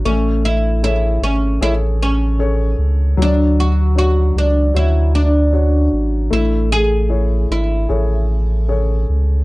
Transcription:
X:1
M:4/4
L:1/8
Q:1/4=76
K:A
V:1 name="Upright piano"
A,2 [GAc]2 [GAc]2 [GAc]2 | F,2 [DFc]2 [DFc]2 [DFc]2 | A,2 [EGc]2 [GAc]2 [GAc]2 |]
V:2 name="Oud"
C E E C E C2 z | D F F D E D2 z | E G2 E4 z |]
V:3 name="Sub bass" clef=bass
A,,,3 G,,, A,,,3 C,, | D,,3 C,, D,,3 G,,, | A,,,3 G,,, A,,,3 C,, |]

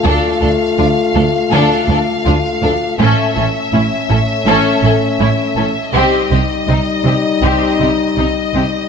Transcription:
X:1
M:4/4
L:1/8
Q:1/4=81
K:Dphr
V:1 name="Violin section"
f8 | =e8 | e8 |]
V:2 name="Violin section"
A A F A A A F A | A A =E A A A E A | G G E G G G E G |]
V:3 name="Viola section"
D D D D D D D D | ^C C C C C C C C | C C C C C C C C |]
V:4 name="French horn section"
[A,F]8 | [A,^C]8 | [G,E]8 |]
V:5 name="Cello section" clef=bass
D,, D,, D,, D,, D,, D,, D,, D,, | A,, A,, A,, A,, A,, A,, A,, A,, | C, C, C, C, C, C, C, C, |]
V:6 name="Double bass section" clef=bass
D,, D,, D,, D,, D,, D,, D,, D,, | A,,, A,,, A,,, A,,, A,,, A,,, A,,, A,,, | C,, C,, C,, C,, C,, C,, C,, C,, |]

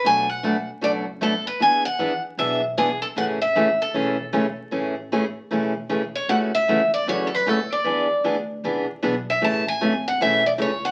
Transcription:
X:1
M:4/4
L:1/16
Q:"Swing" 1/4=154
K:A
V:1 name="Steel-string acoustic guitar"
g2 f4 z2 d2 z2 A2 B2 | g2 f4 z2 e2 z2 G2 A2 | f2 e4 A8- A2- | A12 z2 c2 |
[K:F#m] f2 e4 d2 c3/2 A/2 B2 A2 d2- | d4 z8 z2 e2 | a2 g4 f2 e2 d2 c2 f2 |]
V:2 name="Steel-string acoustic guitar"
[B,,F,A,DF]2 z2 [B,,F,A,DF]2 z2 [B,,F,A,DF]2 z2 [B,,F,A,DF]2 z2 | [E,B,DG]2 z2 [E,B,DG]2 z2 [E,B,DG]2 z2 [E,B,DG]2 z2 | [C,E,A,CG]2 z2 [C,E,A,CG]2 z2 [C,E,A,CG]2 z2 [C,E,A,CG]2 z2 | [C,E,A,CG]2 z2 [C,E,A,CG]2 z2 [C,E,A,CG]2 z2 [C,E,A,CG]2 z2 |
[K:F#m] [C,E,A,CF]2 z2 [C,E,A,CF]2 z2 [C,E,A,CF]2 z2 [C,E,A,CF]2 z2 | [E,B,DG]2 z2 [E,B,DG]2 z2 [E,B,DG]2 z2 [E,B,DG]2 z2 | [C,E,A,CG]2 z2 [C,E,A,CG]2 z2 [C,E,A,CG]2 z2 [C,E,A,CG]2 z2 |]
V:3 name="Upright bass" clef=bass
B,,,8 F,,,8 | E,,8 B,,,8 | A,,,8 E,,,8 | A,,,8 E,,,8 |
[K:F#m] C,,4 E,,4 F,,4 ^D,,2 z2 | E,,4 D,,4 C,,2 z2 B,,,4 | A,,,4 G,,,4 B,,,4 C,,4 |]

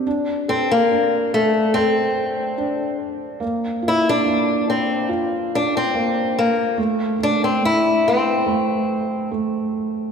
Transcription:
X:1
M:4/4
L:1/16
Q:1/4=71
K:Bblyd
V:1 name="Steel-string acoustic guitar"
z2 C B,3 A,2 C6 z2 | z2 E D3 C2 z2 D C3 B,2 | z2 D C E2 C6 z4 |]
V:2 name="Felt piano"
D2 A2 D4 A4 D4 | B,2 F2 B,4 F4 B,4 | A,2 A,2 A,4 A,4 A,4 |]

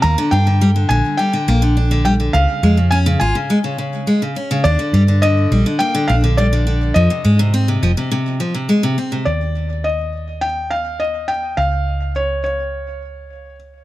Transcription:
X:1
M:4/4
L:1/16
Q:1/4=104
K:Eb
V:1 name="Felt piano"
b2 g4 a2 g6 g2 | f4 a2 a8 z2 | d4 e4 g2 f2 d4 | e12 z4 |
d4 e4 g2 f2 e2 g2 | f4 _d2 d8 z2 |]
V:2 name="Steel-string acoustic guitar" clef=bass
B, D, D D, G, D, D,2 G, D, B, D, D D, G, D, | _D,2 A, D, _D D, F D, A, D, D,2 A, D, D D, | D D, G, D, D,2 G, D, B, D, D D, G, D, D,2 | F, C, A, C, C C, F, C, C,2 F, C, A, C, C C, |
z16 | z16 |]
V:3 name="Fingered electric bass" clef=bass
E,,2 G,,4 B,,,2 z2 B,,,6 | _D,,2 F,,4 A,,,2 z8 | E,,2 G,,4 B,,,2 z2 B,,,6 | F,,2 A,,4 F,,,2 z8 |
E,,16 | _D,,16 |]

